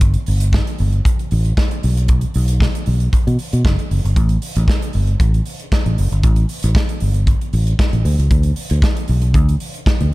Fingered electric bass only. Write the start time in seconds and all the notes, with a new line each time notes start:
Already playing: G1
0.28 G1
0.80 G1
1.32 A1
1.84 B1
2.35 B1
2.87 B1
3.27 B2
3.53 B2
3.65 F#1
3.91 F#1
4.05 G1
4.17 A1
4.57 A1
4.95 G1
5.20 A1
5.86 A1
5.98 F#1
6.12 G1
6.24 A1
6.64 A1
7.02 G1
7.53 A1
7.93 A1
8.05 D2
8.19 C#2
8.31 D2
8.71 D2
9.09 B1
9.35 D2
10.01 D2